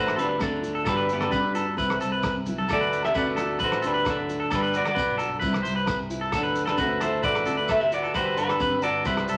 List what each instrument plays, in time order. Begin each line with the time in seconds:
Already playing: fingered electric bass A1, nylon-string guitar A2 D3 A3 D4 F#4, clean electric guitar F#4 B4 C5
0.00 tenor saxophone A3
0.07 cross-stick, low agogo
0.16 fingered electric bass D2, tenor saxophone G3, clean electric guitar D4 A4 B4, nylon-string guitar F#4, closed hi-hat, muted conga, high conga, shekere
0.29 muted clean electric guitar stroke
0.39 tenor saxophone F#3, nylon-string guitar A3 D4, clean electric guitar A4, kick, cross-stick, high conga, low agogo, shekere
0.43 clean electric guitar D4
0.62 nylon-string guitar F#4, closed hi-hat, muted conga, shekere
0.75 clean electric guitar A4
0.83 nylon-string guitar G2 D3 B3 D4 F#4, clean electric guitar A4, kick, cross-stick, muted conga, low agogo, shekere
0.87 fingered electric bass G1, tenor saxophone G3, clean electric guitar D4 B4
0.97 clean electric guitar B4
1.07 tenor saxophone E3, nylon-string guitar B3, closed hi-hat, shekere
1.13 clean electric guitar B3 G4
1.21 tenor saxophone G3, clean electric guitar D4 A4 B4, cross-stick, low agogo
1.30 fingered electric bass G2, nylon-string guitar D3, clean electric guitar B4, kick, high conga, shekere
1.54 nylon-string guitar F#4, clean electric guitar A4, closed hi-hat, low agogo, shekere
1.76 fingered electric bass C2, nylon-string guitar C3 G3 C4 E4, clean electric guitar B4, muted nylon-string guitar stroke, kick, muted conga, high conga, shekere
1.90 cross-stick, low agogo
2.00 fingered electric bass C2, nylon-string guitar G3, clean electric guitar A4, closed hi-hat, muted conga, shekere
2.12 clean electric guitar B4
2.23 nylon-string guitar E3, kick, cross-stick, high conga, low agogo, shekere
2.36 high conga
2.46 nylon-string guitar E4, closed hi-hat, low conga, shekere
2.58 clean electric guitar A4, low conga
2.68 fingered electric bass D2, nylon-string guitar D3, tenor saxophone A3, clean electric guitar A4, muted nylon-string guitar stroke, kick, cross-stick, muted conga, low agogo, shekere
2.73 clean electric guitar F#4 D5
2.81 clean electric guitar B4
2.92 nylon-string guitar D4, closed hi-hat, shekere
3.03 tenor saxophone C4, clean electric guitar G4 A4 E5, cross-stick, low agogo
3.14 fingered electric bass D2, tenor saxophone A3, nylon-string guitar A3, clean electric guitar F#4 B4 D5, kick, high conga, shekere
3.36 nylon-string guitar F#4, clean electric guitar A4, cross-stick, closed hi-hat, low agogo, shekere
3.59 fingered electric bass A1, nylon-string guitar A2, tenor saxophone A3, clean electric guitar B4, kick, shekere
3.64 clean electric guitar F#4 C5
3.72 cross-stick, low agogo
3.82 fingered electric bass D2, tenor saxophone G3, nylon-string guitar F#4, clean electric guitar A4, closed hi-hat, muted conga, high conga, shekere
3.86 clean electric guitar D4 B4
3.94 clean electric guitar B4
4.05 tenor saxophone F#3, nylon-string guitar A3, muted nylon-string guitar stroke, kick, cross-stick, high conga, low agogo, shekere
4.10 clean electric guitar D4 A4
4.29 nylon-string guitar F#4, closed hi-hat, muted conga, shekere
4.40 clean electric guitar A4
4.50 fingered electric bass G1, nylon-string guitar G2 D4, clean electric guitar D4 A4, kick, cross-stick, muted conga, low agogo, shekere
4.54 tenor saxophone G3, clean electric guitar B4
4.63 clean electric guitar B4
4.73 nylon-string guitar B3, tenor saxophone B3, clean electric guitar F#4 D5, closed hi-hat, shekere
4.85 clean electric guitar F#4 D5, muted clean electric guitar stroke, cross-stick, low agogo
4.91 tenor saxophone B3, clean electric guitar B4
4.95 fingered electric bass B1, nylon-string guitar D3, kick, high conga, shekere
5.18 nylon-string guitar F#4, clean electric guitar A4, closed hi-hat, low agogo, shekere
5.40 fingered electric bass C2, nylon-string guitar C3 G3 C4 E4, clean electric guitar B4, muted nylon-string guitar stroke, kick, muted conga, high conga, shekere
5.53 cross-stick, low agogo
5.63 fingered electric bass C2, nylon-string guitar G3, clean electric guitar C5, closed hi-hat, muted conga, shekere
5.76 clean electric guitar B4
5.86 nylon-string guitar E3, kick, cross-stick, high conga, low agogo, shekere
6.10 nylon-string guitar E4, closed hi-hat, shekere
6.21 clean electric guitar A4
6.32 fingered electric bass D2, nylon-string guitar D3 F#4, tenor saxophone F#3, clean electric guitar A4, kick, cross-stick, muted conga, low agogo, shekere
6.37 clean electric guitar D4
6.43 clean electric guitar B4
6.55 nylon-string guitar D4, closed hi-hat, shekere
6.66 tenor saxophone G3, clean electric guitar D4 A4, cross-stick, low agogo
6.70 clean electric guitar B4
6.77 fingered electric bass D2, nylon-string guitar A3, tenor saxophone A3, clean electric guitar F#4 B4 C5, kick, high conga, shekere
7.00 tenor saxophone A3, clean electric guitar E4 A4 C5, nylon-string guitar F#4, cross-stick, closed hi-hat, low agogo, shekere
7.23 fingered electric bass A1, nylon-string guitar A2, tenor saxophone A3, clean electric guitar F#4 B4 D5, kick, muted conga, shekere
7.35 cross-stick, low agogo
7.45 fingered electric bass D2, nylon-string guitar F#4, clean electric guitar A4, closed hi-hat, muted conga, high conga, shekere
7.57 clean electric guitar B4
7.68 nylon-string guitar A3 B3, tenor saxophone A3, clean electric guitar A4 E5, kick, cross-stick, high conga, low agogo, shekere
7.80 tenor saxophone C4, nylon-string guitar D4, clean electric guitar G4 E5
7.92 tenor saxophone B3, nylon-string guitar E4, clean electric guitar F#4 D5, closed hi-hat, muted conga, shekere
8.04 nylon-string guitar F#4, clean electric guitar A4
8.14 fingered electric bass G1, nylon-string guitar G2 D4, tenor saxophone G3, clean electric guitar F#4 B4 C5, kick, cross-stick, muted conga, low agogo, shekere
8.26 clean electric guitar B4
8.36 tenor saxophone G3, nylon-string guitar B3, clean electric guitar D4 B4, closed hi-hat, shekere
8.49 clean electric guitar A4, cross-stick, low agogo
8.60 fingered electric bass G1, nylon-string guitar D3, clean electric guitar B4, kick, high conga, low conga, shekere
8.82 tenor saxophone B3, clean electric guitar F#4 A4 D5, nylon-string guitar F#4, closed hi-hat, low agogo, shekere
9.04 fingered electric bass C2, nylon-string guitar C3 C4, tenor saxophone G3, clean electric guitar E4 B4 C5, kick, muted conga, high conga, shekere
9.17 cross-stick, low agogo
9.28 fingered electric bass C2, nylon-string guitar G3, clean electric guitar A4, closed hi-hat, shekere